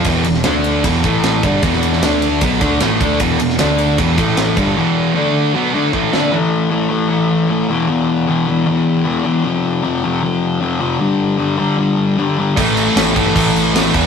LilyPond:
<<
  \new Staff \with { instrumentName = "Distorted electric guitar" } { \time 4/4 \key a \minor \tempo 4 = 154 r1 | r1 | r1 | r1 |
r1 | r1 | r1 | r1 |
<a, e a c' e'>4. <a, e a c' e'>2 <e g b e'>8 | }
  \new Staff \with { instrumentName = "Distorted electric guitar" } { \clef bass \time 4/4 \key a \minor <e, b, e>8 <e, b,>8 <d a d'>4 <e, b, e>8 <a, e a>4 <g, d g>8 | <e, b, e>4 <d a d'>4 <b, fis b>8 <d a d'>8 <a, e a>8 <d a d'>8 | <e, b, e>8 <e, b,>8 <d a d'>4 <e, b, e>8 <a, e a>4 <g, d g>8 | <e, b, e>4 <d a d'>4 <b, fis b>8 <d a d'>8 <a, e a>8 <d a d'>8 |
r1 | r1 | r1 | r1 |
<a, e a>4 <a, e a>8 <a, e a>8 <a, e a>4 <a, e a>8 <e, b, e>8 | }
  \new Staff \with { instrumentName = "Distorted electric guitar" } { \clef bass \time 4/4 \key a \minor <e, b, e>8 <e, b,>8 <d a d'>4 <e, b, e>8 <a, e a>4 <g, d g>8 | <e, b, e>4 <d a d'>4 <b, fis b>8 <d a d'>8 <a, e a>8 <d a d'>8 | <e, b, e>8 <e, b,>8 <d a d'>4 <e, b, e>8 <a, e a>4 <g, d g>8 | <e, b, e>4 <d a d'>4 <b, fis b>8 <d a d'>8 <a, e a>8 <d a d'>8 |
<a, e a>4 <a, e a>8 <a, e a>8 <a, e a>4 <a, e a>8 <e, b, e>8 | <e, b, e>4 <e, b, e>8 <e, b, e>8 <e, b, e>4 <e, b, e>8 <e, b, e>8 | <f, c f>4 <f, c f>8 <f, c f>8 <f, c f>4 <f, c f>8 <f, c f>8 | <g, d g>4 <g, d g>8 <g, d g>8 <g, d g>4 <g, d g>8 <g, d g>8 |
<a, e a>4 <a, e a>8 <a, e a>8 <a, e a>4 <a, e a>8 <e, b, e>8 | }
  \new Staff \with { instrumentName = "Picked electric bass" } { \clef bass \time 4/4 \key a \minor e,,8 e,,8 d,4 e,,8 a,,4 g,,8 | e,,4 d,4 b,,8 d,8 a,,8 d,8 | e,,8 e,,8 d,4 e,,8 a,,4 g,,8 | r1 |
r1 | r1 | r1 | r1 |
a,,4 a,,8 g,,8 a,,8 a,,8 a,,8 e,,8 | }
  \new DrumStaff \with { instrumentName = "Drums" } \drummode { \time 4/4 <bd cymr>8 cymr16 sn16 <cymr sn>8 cymr8 <bd cymr>8 <bd cymr>8 <cymr sn>8 <bd cymr>8 | <bd cymr>16 sn16 cymr16 sn16 <cymr sn>8 cymr8 <bd cymr>8 <bd cymr>8 <cymr sn>8 <bd cymr>8 | <bd cymr>8 cymr16 sn16 <cymr sn>8 cymr8 <bd cymr>8 <bd cymr>8 <cymr sn>8 <bd cymr>8 | r4 r4 r4 bd8 sn8 |
r4 r4 r4 r4 | r4 r4 r4 r4 | r4 r4 r4 r4 | r4 r4 r4 r4 |
<cymc bd>8 cymc8 <cymc sn>8 <cymc bd>8 <cymc bd>8 cymc8 <cymc sn>16 sn16 <cymc bd>8 | }
>>